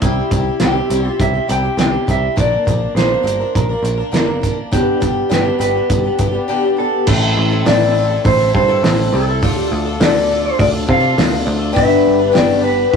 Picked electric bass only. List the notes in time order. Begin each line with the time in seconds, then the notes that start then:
0.02 C2
0.31 C2
0.61 C2
0.90 C2
1.20 C2
1.49 C2
1.77 C2
2.08 C2
2.37 A#1
2.67 A#1
2.95 A#1
3.24 G1
3.56 A#1
3.83 A#1
4.13 F#1
4.72 G1
5.02 G1
5.31 G1
5.60 G1
5.90 G1
6.19 G1
7.07 A1
7.37 A1
7.65 A1
8.25 A1
8.54 G2
8.83 A1
9.13 C2
9.43 D2
9.72 D2
10.01 D2
10.59 D2
10.89 C3
11.18 D2
11.47 D2
11.76 G1
12.07 G1
12.35 G1